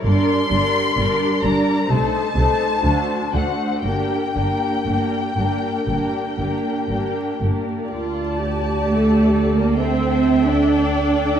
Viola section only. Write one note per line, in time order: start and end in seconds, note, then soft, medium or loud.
0.05 0.50 G3 soft
0.05 0.50 D4 soft
0.51 0.96 G3 soft
0.51 0.96 D4 soft
0.97 1.42 G3 soft
0.97 1.42 D4 soft
1.43 1.89 G3 soft
1.43 1.89 D4 soft
1.90 2.35 A3 soft
1.90 2.35 D#4 soft
2.36 2.83 A3 soft
2.36 2.84 D#4 soft
2.85 3.33 A3 soft
2.85 3.33 D4 soft
3.34 3.83 A3 soft
3.34 3.83 D4 soft
3.85 4.34 A#3 soft
3.85 4.34 D4 soft
4.35 4.85 A#3 soft
4.35 4.85 D4 soft
4.87 5.36 A#3 soft
4.87 5.36 D4 soft
5.37 5.87 A#3 soft
5.37 5.87 D4 soft
5.88 6.38 A#3 soft
5.88 6.38 D4 soft
6.39 6.89 A#3 soft
6.39 6.89 D4 soft
6.90 7.41 A#3 soft
6.90 7.41 D4 soft
7.42 7.92 A#3 soft
7.42 7.91 D4 soft
7.91 8.36 F4 soft
7.91 9.76 D5 soft
8.39 9.80 G4 soft
9.79 11.40 A4 soft
9.79 10.70 E5 soft
10.69 11.14 D5 soft
11.15 11.40 D5 soft